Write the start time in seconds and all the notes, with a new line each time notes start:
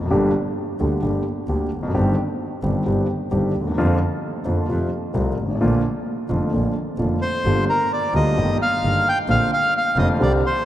0.05 G1 F#2
0.10 G1 G2 D3 G3 A#3 G4
0.80 D2 D3 G3 A#3 G4
1.02 G1 G2 D3 G3 A#3 G4
1.48 D2 D3 G3 A#3 G4
1.72 F1
1.77 E2
1.83 F2
1.88 F#2
1.94 G1 G2 D#3 G3 C4 G4
2.63 G1 G2 D#3 G3 C4 G4
2.86 G1 G2 D#3 G3 C4 G4
3.31 G1 G2 D#3 G3 C4 G4
3.55 D#2
3.61 D2
3.67 D#2
3.71 E2
3.78 F2 D3 F3 A#3 F4
4.45 F2 D3 F3 A#3 F4
4.68 F2 C3 F3 A3 F4
5.14 C2 C3 F3 A3 F4
5.38 G#1
5.43 G1
5.48 G#1
5.55 A1
5.60 A#1 A#2 D3 F3 A#3 F4
6.29 F1 F2 D3 F3 A#3 F4
6.53 A#1 A#2 D3 F3 A#3 F4
6.98 F1 F2 D3 F3 A#3 F4
7.22 C5
7.45 G1 G2 D3 G3 A#3 F4
7.69 A#4
7.93 D5
8.14 D2 D3 G3 A#3 F4 D#5
8.36 G1 G2 D#3 G3 A#3 G4
8.62 F5
8.83 G1 G2 D#3 G3 A#3 G4
9.09 G5
9.28 A#1 A#2 D3 A#3 C4 F4 F5
9.53 F5
9.78 F5
9.96 F1 F2 D3 A#3 C4 F4 D#5
10.20 C2 C3 D3 G3 C4 G4 D5
10.46 C5